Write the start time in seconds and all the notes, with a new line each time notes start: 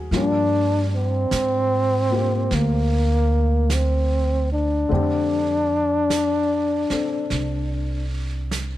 Already playing: F#3 A#3 C4 D#4 F4 F#4 G#4 A#4 C5
0.11 G2 F3 G3 A#3 D4 F4, brush sweep, snare
0.16 D4
0.95 C4
1.31 G#2, brush sweep, snare, hi-hat pedal
2.11 A#3 C4 F4 G4
2.51 D2 A#3, brush sweep, snare
3.70 brush sweep, snare, hi-hat pedal
3.74 C4
4.53 D4
4.89 F2 D3 A3 C4 D4, brush sweep
4.93 G4
6.10 brush sweep, snare, hi-hat pedal
6.90 C4 D4 A4, muted upright bass stroke, snare
7.30 C2, brush sweep, snare
8.51 brush sweep, snare, hi-hat pedal